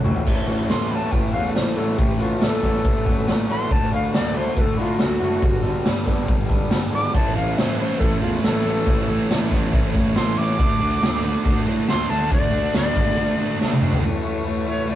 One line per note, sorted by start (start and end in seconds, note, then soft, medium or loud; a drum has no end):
0.00 0.23 A2 medium
0.00 0.24 E3 medium
0.00 0.26 A3 medium
0.00 0.26 C#4 medium
0.04 0.19 D2 medium
0.04 0.26 F#4 medium
0.04 mid tom medium
0.16 floor tom medium
0.24 0.43 A1 medium
0.24 0.46 A2 medium
0.24 0.46 E3 medium
0.24 0.47 A3 loud
0.24 kick medium
0.24 crash loud
0.46 0.64 A1 medium
0.46 0.68 A2 medium
0.46 0.68 E3 medium
0.46 0.76 E3 medium
0.46 0.69 A3 medium
0.46 0.76 A3 medium
0.46 0.76 C#4 medium
0.46 0.75 F#4 loud
0.46 open hi-hat medium
0.68 1.02 A1 medium
0.68 0.89 A2 medium
0.68 0.90 E3 medium
0.68 0.91 A3 medium
0.68 0.93 C6 medium
0.68 snare loud
0.68 open hi-hat medium
0.90 1.10 A2 medium
0.90 1.11 E3 medium
0.90 1.20 E3 medium
0.90 1.11 A3 medium
0.90 1.19 A3 medium
0.90 1.19 C#4 medium
0.90 1.19 F#4 medium
0.90 0.96 B5 medium
0.90 open hi-hat soft
0.95 1.13 A5 medium
1.11 1.29 A1 medium
1.11 1.32 A2 medium
1.11 1.33 E3 medium
1.11 1.33 A3 medium
1.11 1.32 G5 loud
1.11 kick loud
1.11 open hi-hat medium
1.33 1.50 E2 medium
1.33 1.53 A2 medium
1.33 1.54 E3 medium
1.33 1.63 E3 medium
1.33 1.55 A3 medium
1.33 1.62 A3 medium
1.33 1.62 C#4 medium
1.33 1.62 F#4 medium
1.33 1.54 F5 medium
1.33 open hi-hat medium
1.54 1.72 A1 medium
1.54 1.75 A2 medium
1.54 1.76 E3 medium
1.54 1.76 A3 medium
1.54 1.78 C5 medium
1.54 snare medium
1.54 open hi-hat medium
1.76 1.94 A1 medium
1.76 1.96 A2 medium
1.76 1.97 E3 medium
1.76 2.05 E3 medium
1.76 1.98 A3 medium
1.76 2.05 A3 medium
1.76 2.05 C#4 medium
1.76 2.05 F#4 medium
1.76 1.99 A4 medium
1.76 open hi-hat soft
1.97 2.32 A1 medium
1.97 2.17 A2 medium
1.97 2.19 E3 medium
1.97 2.19 A3 medium
1.97 2.19 G4 medium
1.97 kick loud
1.97 open hi-hat medium
2.18 2.39 A2 medium
2.18 2.40 E3 medium
2.18 2.48 E3 medium
2.18 2.41 A3 medium
2.18 2.48 A3 medium
2.18 2.48 C#4 medium
2.18 2.44 F4 medium
2.18 2.48 F#4 medium
2.18 open hi-hat soft
2.40 2.58 A1 medium
2.40 2.61 A2 medium
2.40 2.63 E3 medium
2.40 2.63 A3 medium
2.40 3.26 A4 loud
2.40 snare loud
2.40 open hi-hat medium
2.62 2.80 A1 medium
2.62 2.83 A2 medium
2.62 2.91 E3 medium
2.62 2.83 E3 medium
2.62 2.91 A3 medium
2.62 2.84 A3 medium
2.62 2.91 C#4 medium
2.62 2.91 F#4 medium
2.62 kick medium
2.62 open hi-hat medium
2.84 3.18 A1 medium
2.84 3.04 A2 medium
2.84 3.04 E3 medium
2.84 3.06 A3 medium
2.84 kick loud
2.84 open hi-hat medium
3.05 3.26 A2 medium
3.05 3.26 E3 medium
3.05 3.34 E3 medium
3.05 3.27 A3 loud
3.05 3.34 A3 medium
3.05 3.34 C#4 medium
3.05 3.34 F#4 medium
3.05 kick medium
3.05 open hi-hat medium
3.27 3.44 A1 medium
3.27 3.47 A2 medium
3.27 3.48 E3 medium
3.27 3.49 A3 medium
3.27 snare loud
3.27 open hi-hat medium
3.48 3.66 A1 medium
3.48 3.69 A2 medium
3.48 3.69 E3 medium
3.48 3.71 E3 medium
3.48 3.71 A3 medium
3.48 3.70 A3 medium
3.48 3.71 C#4 medium
3.48 3.70 F#4 medium
3.48 3.74 C6 loud
3.48 open hi-hat medium
3.70 3.88 D2 medium
3.70 3.90 D3 medium
3.70 3.92 A3 loud
3.70 3.92 D4 medium
3.70 3.93 A5 medium
3.70 kick loud
3.70 open hi-hat medium
3.91 4.09 D2 medium
3.91 4.12 D3 loud
3.91 4.20 D3 medium
3.91 4.20 A3 medium
3.91 4.13 A3 medium
3.91 4.13 D4 medium
3.91 4.20 E4 medium
3.91 4.20 F#4 medium
3.91 4.14 F5 medium
3.91 open hi-hat medium
4.13 4.47 D2 medium
4.13 4.34 D3 medium
4.13 4.35 A3 medium
4.13 4.36 D4 medium
4.13 4.38 D5 medium
4.13 snare loud
4.13 open hi-hat medium
4.34 4.55 D3 medium
4.34 4.63 D3 medium
4.34 4.63 A3 medium
4.34 4.56 A3 medium
4.34 4.56 D4 medium
4.34 4.63 E4 medium
4.34 4.63 F#4 medium
4.34 4.56 C5 medium
4.34 open hi-hat soft
4.56 4.73 D2 medium
4.56 4.76 D3 medium
4.56 4.78 A3 medium
4.56 4.78 D4 medium
4.56 4.62 B4 medium
4.56 kick loud
4.56 open hi-hat medium
4.61 4.78 A4 medium
4.77 4.95 A2 medium
4.77 4.98 D3 medium
4.77 5.06 D3 medium
4.77 5.06 A3 medium
4.77 4.99 A3 medium
4.77 4.99 D4 medium
4.77 5.06 E4 medium
4.77 5.03 F4 medium
4.77 5.06 F#4 medium
4.77 open hi-hat soft
4.99 5.16 D2 medium
4.99 5.20 D3 medium
4.99 5.21 A3 medium
4.99 5.20 D4 medium
4.99 5.84 F#4 loud
4.99 snare medium
4.99 open hi-hat medium
5.20 5.38 F#1 medium
5.20 5.41 D3 medium
5.20 5.43 D3 medium
5.20 5.42 A3 medium
5.20 5.43 A3 medium
5.20 5.42 D4 medium
5.20 5.42 E4 medium
5.20 5.42 F#4 medium
5.20 open hi-hat soft
5.42 5.76 G1 medium
5.42 5.63 G2 medium
5.42 5.63 D3 loud
5.42 5.64 G3 loud
5.42 kick loud
5.42 open hi-hat medium
5.63 5.84 G2 medium
5.63 5.85 D3 medium
5.63 5.92 G3 medium
5.63 5.86 G3 medium
5.63 5.92 B3 medium
5.63 5.92 D4 medium
5.63 5.92 A4 medium
5.63 open hi-hat medium
5.85 6.02 G1 medium
5.85 6.05 G2 medium
5.85 6.06 D3 medium
5.85 6.06 G3 medium
5.85 snare loud
5.85 open hi-hat medium
6.06 6.24 G1 medium
6.06 6.27 G2 medium
6.06 6.27 D3 medium
6.06 6.35 G3 medium
6.06 6.28 G3 medium
6.06 6.35 B3 medium
6.06 6.35 D4 medium
6.06 6.35 A4 medium
6.06 kick medium
6.06 open hi-hat soft
6.28 6.62 G1 medium
6.28 6.48 G2 medium
6.28 6.49 D3 medium
6.28 6.50 G3 medium
6.28 kick medium
6.28 open hi-hat medium
6.49 6.70 G2 medium
6.49 6.71 D3 medium
6.49 6.78 G3 medium
6.49 6.71 G3 medium
6.49 6.78 B3 medium
6.49 6.78 D4 medium
6.49 6.78 A4 medium
6.49 kick medium
6.49 open hi-hat medium
6.71 6.88 G1 medium
6.71 6.92 G2 medium
6.71 6.92 D3 medium
6.71 6.93 G3 medium
6.71 snare loud
6.71 open hi-hat medium
6.92 7.09 G#1 medium
6.92 7.13 G2 medium
6.92 7.14 D3 medium
6.92 7.15 G3 medium
6.92 7.14 G3 medium
6.92 7.15 B3 medium
6.92 7.15 D4 medium
6.92 7.14 A4 medium
6.92 7.15 D6 loud
6.92 open hi-hat medium
7.14 7.31 A1 medium
7.14 7.36 A2 medium
7.14 7.36 E3 medium
7.14 7.37 A3 medium
7.14 7.36 C#4 loud
7.14 7.36 E4 loud
7.14 7.36 A5 medium
7.14 kick loud
7.14 open hi-hat medium
7.36 7.53 A1 medium
7.36 7.58 A2 medium
7.36 7.58 E3 medium
7.36 7.59 A3 medium
7.36 7.57 C#4 medium
7.36 7.57 E4 medium
7.36 7.60 F5 medium
7.36 open hi-hat medium
7.57 7.90 A1 medium
7.57 7.79 A2 medium
7.57 7.80 E3 medium
7.57 7.80 A3 medium
7.57 7.79 C#4 medium
7.57 7.79 E4 medium
7.57 7.79 C5 medium
7.57 snare loud
7.57 open hi-hat medium
7.79 8.00 A2 medium
7.79 8.01 E3 medium
7.79 8.02 A3 medium
7.79 8.00 C#4 medium
7.79 8.01 E4 medium
7.79 8.01 C5 medium
7.79 open hi-hat medium
8.00 8.17 A1 medium
8.00 8.22 A2 medium
8.00 8.23 E3 medium
8.00 8.24 A3 medium
8.00 8.21 C#4 medium
8.00 8.22 E4 medium
8.00 8.21 A4 loud
8.00 kick loud
8.00 open hi-hat medium
8.21 8.39 E2 medium
8.21 8.43 A2 medium
8.21 8.45 E3 medium
8.21 8.45 A3 loud
8.21 8.43 C#4 loud
8.21 8.44 E4 loud
8.21 8.42 F4 medium
8.21 open hi-hat medium
8.42 8.60 A1 medium
8.42 8.65 A2 medium
8.42 8.66 E3 medium
8.42 8.67 A3 medium
8.42 8.64 C#4 medium
8.42 8.66 E4 medium
8.42 9.26 A4 loud
8.42 snare loud
8.42 open hi-hat medium
8.65 8.82 A1 medium
8.65 8.85 A2 medium
8.65 8.87 E3 medium
8.65 8.87 A3 medium
8.65 8.86 C#4 medium
8.65 8.87 E4 loud
8.65 open hi-hat medium
8.87 9.20 A1 loud
8.87 9.07 A2 medium
8.87 9.09 E3 loud
8.87 9.09 A3 loud
8.87 9.07 C#4 loud
8.87 9.08 E4 loud
8.87 kick loud
8.87 open hi-hat medium
9.08 9.28 A2 medium
9.08 9.30 E3 loud
9.08 9.30 A3 medium
9.08 9.29 C#4 medium
9.08 9.30 E4 medium
9.08 open hi-hat medium
9.30 9.47 A1 medium
9.30 9.50 A2 medium
9.30 9.51 E3 medium
9.30 9.51 A3 medium
9.30 9.50 C#4 medium
9.30 9.51 E4 medium
9.30 snare loud
9.30 open hi-hat medium
9.51 9.68 A1 medium
9.51 9.71 A2 medium
9.51 9.72 E3 medium
9.51 9.73 A3 medium
9.51 9.73 C#4 medium
9.51 9.73 E4 medium
9.51 kick medium
9.51 open hi-hat soft
9.72 10.06 A1 medium
9.72 9.93 A2 medium
9.72 9.93 E3 medium
9.72 9.95 A3 medium
9.72 9.93 C#4 medium
9.72 9.93 E4 medium
9.72 kick loud
9.72 open hi-hat medium
9.94 10.14 A2 loud
9.94 10.15 E3 medium
9.94 10.16 A3 loud
9.94 10.14 C#4 loud
9.94 10.14 E4 loud
9.94 kick medium
9.94 open hi-hat medium
10.15 10.32 A1 medium
10.15 10.35 A2 medium
10.15 10.36 E3 medium
10.15 10.37 A3 medium
10.15 10.36 C#4 medium
10.15 10.36 E4 medium
10.15 10.39 C6 medium
10.15 snare loud
10.15 open hi-hat medium
10.36 10.54 A1 medium
10.36 10.57 A2 medium
10.36 10.57 E3 medium
10.36 10.59 A3 medium
10.36 10.57 C#4 medium
10.36 10.58 E4 loud
10.36 11.63 D6 loud
10.36 open hi-hat medium
10.58 10.76 D2 medium
10.58 10.79 D3 medium
10.58 10.80 A3 medium
10.58 10.80 D4 medium
10.58 10.80 F#4 loud
10.58 kick loud
10.58 open hi-hat medium
10.79 10.96 D2 medium
10.79 11.01 D3 medium
10.79 11.02 A3 medium
10.79 11.03 D4 medium
10.79 11.02 F#4 loud
10.79 open hi-hat medium
11.01 11.35 D2 medium
11.01 11.24 D3 medium
11.01 11.24 A3 loud
11.01 11.24 D4 medium
11.01 11.23 F#4 medium
11.01 snare loud
11.01 open hi-hat medium
11.23 11.44 D3 medium
11.23 11.45 A3 medium
11.23 11.45 D4 medium
11.23 11.45 F#4 medium
11.23 open hi-hat medium
11.45 11.62 D2 medium
11.45 11.65 D3 medium
11.45 11.67 A3 medium
11.45 11.66 D4 medium
11.45 11.67 F#4 loud
11.45 kick loud
11.45 open hi-hat medium
11.67 11.83 A2 medium
11.67 11.87 D3 medium
11.67 11.89 A3 loud
11.67 11.88 D4 loud
11.67 11.88 F#4 medium
11.67 open hi-hat medium
11.88 12.05 D2 loud
11.88 12.09 D3 medium
11.88 12.10 A3 medium
11.88 12.10 D4 medium
11.88 12.10 F#4 medium
11.88 12.11 C6 loud
11.88 snare medium
11.88 open hi-hat medium
12.09 12.26 D2 medium
12.09 12.29 D3 medium
12.09 12.31 A3 medium
12.09 12.30 D4 medium
12.09 12.32 F#4 loud
12.09 12.31 A5 loud
12.09 open hi-hat medium
12.30 12.64 D2 medium
12.30 12.51 D3 medium
12.30 12.52 A3 medium
12.30 12.52 D4 loud
12.30 12.52 F#4 medium
12.30 12.74 D5 loud
12.30 kick loud
12.30 open hi-hat medium
12.52 12.73 D3 medium
12.52 12.73 A3 medium
12.52 12.73 D4 medium
12.52 12.74 F#4 medium
12.52 open hi-hat medium
12.74 12.91 D2 loud
12.74 12.94 D3 medium
12.74 12.95 A3 loud
12.74 12.95 D4 medium
12.74 12.94 F#4 medium
12.74 13.59 D5 loud
12.74 snare loud
12.74 open hi-hat medium
12.95 13.13 G#1 medium
12.95 13.15 D3 medium
12.95 13.16 A3 loud
12.95 13.16 D4 loud
12.95 13.17 F#4 loud
12.95 kick medium
12.95 open hi-hat soft
13.17 13.37 D3 medium
13.17 13.37 A3 medium
13.17 13.38 D4 medium
13.17 13.38 F#4 medium
13.38 13.58 D3 medium
13.38 13.59 A3 medium
13.38 13.59 D4 loud
13.38 13.59 F#4 loud
13.59 13.80 D3 medium
13.59 13.80 A3 medium
13.59 13.81 D4 medium
13.59 13.81 F#4 medium
13.59 snare medium
13.71 high tom medium
13.81 14.01 D3 medium
13.81 14.02 A3 medium
13.81 14.02 D4 medium
13.81 14.02 F#4 loud
13.81 mid tom medium
13.92 floor tom medium
14.02 14.23 A2 medium
14.02 14.24 E3 medium
14.02 14.24 A3 loud
14.02 14.95 A3 medium
14.02 14.95 E4 medium
14.02 14.95 F#4 medium
14.02 14.95 C#5 medium
14.24 14.44 A2 loud
14.24 14.44 E3 medium
14.24 14.45 A3 loud
14.44 14.66 A2 medium
14.44 14.67 E3 medium
14.44 14.67 A3 medium
14.67 14.86 A2 medium
14.67 14.88 E3 medium
14.67 14.88 A3 medium
14.67 14.88 C#5 medium
14.88 14.95 A2 loud
14.88 14.95 E3 loud
14.88 14.95 A3 loud
14.88 14.95 D5 medium